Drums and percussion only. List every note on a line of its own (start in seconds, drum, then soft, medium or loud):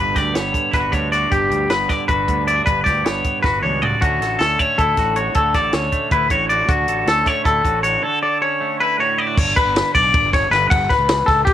0.16 kick medium
0.16 snare soft
0.16 closed hi-hat medium
0.35 snare medium
0.35 closed hi-hat medium
0.54 kick medium
0.54 closed hi-hat medium
0.73 kick loud
0.73 snare soft
0.73 closed hi-hat medium
0.93 kick medium
0.93 closed hi-hat medium
1.13 closed hi-hat medium
1.32 kick loud
1.32 closed hi-hat medium
1.51 closed hi-hat soft
1.70 snare medium
1.70 closed hi-hat medium
1.90 kick medium
1.90 snare soft
1.90 closed hi-hat medium
2.09 kick loud
2.09 closed hi-hat medium
2.28 kick medium
2.28 closed hi-hat medium
2.48 closed hi-hat medium
2.67 kick loud
2.67 closed hi-hat medium
2.86 kick medium
2.86 snare soft
2.86 closed hi-hat medium
3.06 snare medium
3.06 closed hi-hat medium
3.24 kick medium
3.24 closed hi-hat medium
3.44 kick loud
3.44 snare medium
3.63 mid tom medium
3.83 floor tom medium
4.02 kick loud
4.02 closed hi-hat medium
4.22 snare soft
4.22 closed hi-hat medium
4.40 snare medium
4.40 closed hi-hat medium
4.59 kick medium
4.59 closed hi-hat medium
4.78 kick loud
4.78 closed hi-hat medium
4.97 kick medium
4.97 snare soft
4.97 closed hi-hat medium
5.16 closed hi-hat medium
5.34 kick loud
5.34 closed hi-hat medium
5.54 kick medium
5.54 snare soft
5.54 closed hi-hat medium
5.72 snare loud
5.72 closed hi-hat medium
5.92 kick medium
5.92 closed hi-hat medium
6.11 kick loud
6.11 closed hi-hat medium
6.30 kick medium
6.30 closed hi-hat medium
6.50 closed hi-hat medium
6.69 kick loud
6.69 closed hi-hat medium
6.88 closed hi-hat medium
7.07 snare loud
7.07 closed hi-hat medium
7.26 kick medium
7.26 snare soft
7.26 closed hi-hat medium
7.45 kick loud
7.45 closed hi-hat medium
7.65 kick medium
7.65 closed hi-hat medium
7.84 closed hi-hat medium
9.37 kick loud
9.37 crash loud
9.57 kick medium
9.57 ride medium
9.76 snare loud
9.76 ride loud
9.95 kick medium
9.95 ride medium
10.14 kick loud
10.14 ride loud
10.33 kick medium
10.33 snare soft
10.33 ride medium
10.53 snare soft
10.53 ride medium
10.71 kick loud
10.71 ride loud
10.90 kick medium
10.90 snare soft
10.90 ride medium
11.09 snare loud
11.09 ride medium
11.28 kick medium
11.28 snare soft
11.28 ride medium
11.47 kick loud
11.47 ride loud